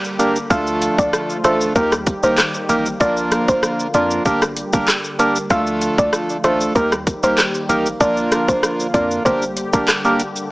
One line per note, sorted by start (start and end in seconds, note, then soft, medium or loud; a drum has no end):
0.00 0.48 D3 medium
0.00 0.49 G3 medium
0.00 0.47 A#3 medium
0.00 0.49 G4 medium
0.05 shaker medium
0.19 0.38 A#3 medium
0.19 0.38 D4 medium
0.19 0.38 G4 medium
0.19 0.38 A#4 medium
0.19 closed hi-hat medium
0.19 shaker medium
0.36 shaker medium
0.50 0.89 D2 loud
0.50 1.74 D3 medium
0.50 1.74 F3 medium
0.50 1.37 A3 loud
0.50 1.74 A3 medium
0.50 1.37 D4 medium
0.50 1.37 F4 medium
0.50 1.74 F4 medium
0.50 1.37 A4 loud
0.50 0.65 F5 loud
0.50 kick loud
0.50 shaker medium
0.67 shaker soft
0.82 closed hi-hat medium
0.82 shaker medium
0.98 1.10 D2 medium
0.98 1.11 D5 medium
0.98 kick medium
0.98 shaker medium
1.13 cross-stick loud
1.13 shaker medium
1.30 shaker medium
1.44 1.69 A1 loud
1.44 1.73 A3 medium
1.44 1.73 D4 medium
1.44 1.73 F4 medium
1.44 1.73 A4 medium
1.44 1.59 C5 medium
1.44 cross-stick medium
1.44 closed hi-hat medium
1.44 shaker soft
1.61 shaker medium
1.75 2.14 D#2 loud
1.75 2.99 D#3 medium
1.75 2.99 G3 medium
1.75 1.94 A#3 loud
1.75 5.47 A#3 medium
1.75 1.94 D#4 medium
1.75 2.99 G4 medium
1.75 1.94 G4 medium
1.75 1.90 A#4 medium
1.75 1.94 A#4 loud
1.75 kick medium
1.75 shaker medium
1.92 cross-stick loud
1.92 shaker medium
2.07 kick medium
2.07 closed hi-hat medium
2.07 shaker medium
2.23 2.35 C2 medium
2.23 2.40 A#3 medium
2.23 2.40 D#4 medium
2.23 2.40 G4 medium
2.23 2.40 A#4 medium
2.23 2.36 C5 medium
2.23 shaker medium
2.38 cross-stick medium
2.38 clap loud
2.38 shaker medium
2.54 shaker medium
2.69 2.94 A1 loud
2.69 2.88 A#3 medium
2.69 2.88 D#4 medium
2.69 2.88 G4 medium
2.69 2.88 A#4 medium
2.69 closed hi-hat medium
2.69 shaker medium
2.86 shaker medium
3.00 3.39 A#1 loud
3.00 6.72 D3 medium
3.00 4.24 F3 medium
3.00 3.87 A#3 loud
3.00 3.87 D4 medium
3.00 3.87 F4 medium
3.00 4.24 F4 medium
3.00 3.87 A#4 loud
3.00 3.15 D5 loud
3.00 kick loud
3.00 shaker medium
3.17 shaker medium
3.32 cross-stick medium
3.32 closed hi-hat medium
3.32 shaker medium
3.48 3.60 A#1 loud
3.48 3.61 C5 medium
3.48 kick medium
3.48 shaker medium
3.63 cross-stick loud
3.63 shaker medium
3.80 shaker medium
3.94 4.19 F2 loud
3.94 4.23 A#3 medium
3.94 4.23 D4 medium
3.94 4.23 F4 medium
3.94 4.23 A#4 medium
3.94 4.09 D5 medium
3.94 closed hi-hat medium
3.94 shaker medium
4.11 shaker medium
4.25 4.64 G1 loud
4.25 5.49 G3 medium
4.25 4.44 A#3 loud
4.25 4.44 D4 medium
4.25 5.49 G4 medium
4.25 4.44 G4 medium
4.25 4.44 A#4 loud
4.25 kick medium
4.25 shaker medium
4.42 cross-stick loud
4.42 shaker medium
4.57 closed hi-hat medium
4.57 shaker medium
4.73 4.85 G1 medium
4.73 4.90 A#3 medium
4.73 4.90 D4 medium
4.73 4.90 G4 medium
4.73 4.90 A#4 medium
4.73 kick loud
4.73 shaker medium
4.88 cross-stick medium
4.88 clap loud
4.88 shaker medium
5.04 shaker soft
5.19 5.38 A#3 medium
5.19 5.38 D4 medium
5.19 5.38 G4 medium
5.19 5.34 A#4 medium
5.19 5.38 A#4 medium
5.19 closed hi-hat medium
5.19 shaker medium
5.36 shaker medium
5.50 5.89 D2 loud
5.50 6.74 F3 medium
5.50 6.37 A3 loud
5.50 6.74 A3 medium
5.50 6.37 D4 loud
5.50 6.74 F4 medium
5.50 6.37 F4 medium
5.50 6.37 A4 loud
5.50 5.65 F5 loud
5.50 kick loud
5.50 shaker medium
5.67 shaker soft
5.81 closed hi-hat medium
5.81 shaker medium
5.98 6.10 D2 loud
5.98 6.11 D5 medium
5.98 kick medium
5.98 shaker medium
6.13 cross-stick loud
6.13 shaker medium
6.30 shaker medium
6.44 6.69 A1 loud
6.44 6.73 A3 medium
6.44 6.73 D4 medium
6.44 6.73 F4 medium
6.44 6.73 A4 medium
6.44 6.58 C5 medium
6.44 cross-stick medium
6.44 closed hi-hat medium
6.44 shaker soft
6.61 shaker medium
6.75 7.14 D#2 loud
6.75 7.99 D#3 medium
6.75 7.99 G3 medium
6.75 6.94 A#3 loud
6.75 10.47 A#3 medium
6.75 6.94 D#4 medium
6.75 7.99 G4 medium
6.75 6.94 G4 medium
6.75 6.90 A#4 medium
6.75 6.94 A#4 loud
6.75 kick medium
6.75 shaker medium
6.92 cross-stick loud
6.92 shaker medium
7.07 kick medium
7.07 closed hi-hat medium
7.07 shaker medium
7.23 7.35 C2 medium
7.23 7.40 A#3 medium
7.23 7.40 D#4 medium
7.23 7.40 G4 medium
7.23 7.40 A#4 medium
7.23 7.36 C5 medium
7.23 shaker medium
7.38 cross-stick medium
7.38 clap loud
7.38 shaker medium
7.54 shaker medium
7.69 7.94 A1 loud
7.69 7.88 A#3 medium
7.69 7.88 D#4 medium
7.69 7.88 G4 medium
7.69 7.88 A#4 medium
7.69 closed hi-hat medium
7.69 shaker medium
7.86 shaker medium
8.00 8.39 A#1 loud
8.00 10.51 D3 medium
8.00 9.24 F3 medium
8.00 8.87 A#3 loud
8.00 8.87 D4 medium
8.00 9.24 F4 medium
8.00 8.87 F4 medium
8.00 8.87 A#4 loud
8.00 8.15 D5 loud
8.00 kick loud
8.00 shaker medium
8.17 shaker medium
8.32 cross-stick loud
8.32 closed hi-hat medium
8.32 shaker medium
8.48 8.60 A#1 loud
8.48 8.61 C5 medium
8.48 kick medium
8.48 shaker medium
8.63 cross-stick loud
8.63 shaker medium
8.80 shaker medium
8.94 9.19 F2 loud
8.94 9.23 A#3 medium
8.94 9.23 D4 medium
8.94 9.23 F4 medium
8.94 9.23 A#4 medium
8.94 9.08 D5 medium
8.94 kick loud
8.94 closed hi-hat medium
8.94 shaker soft
9.11 shaker medium
9.25 9.64 G1 loud
9.25 10.49 G3 medium
9.25 9.44 A#3 medium
9.25 9.44 D4 medium
9.25 10.49 G4 medium
9.25 9.44 G4 medium
9.25 9.44 A#4 loud
9.25 9.40 C5 medium
9.25 kick medium
9.25 shaker medium
9.42 shaker medium
9.57 closed hi-hat medium
9.57 shaker medium
9.73 9.85 G1 medium
9.73 9.90 A#3 medium
9.73 9.90 D4 medium
9.73 9.90 G4 medium
9.73 9.86 A#4 medium
9.73 9.90 A#4 medium
9.73 kick loud
9.73 shaker medium
9.88 cross-stick loud
9.88 clap medium
9.88 shaker medium
10.05 10.22 A#3 medium
10.05 10.22 D4 medium
10.05 10.22 G4 medium
10.05 10.22 A#4 medium
10.05 shaker medium
10.20 closed hi-hat medium
10.20 shaker medium
10.36 shaker medium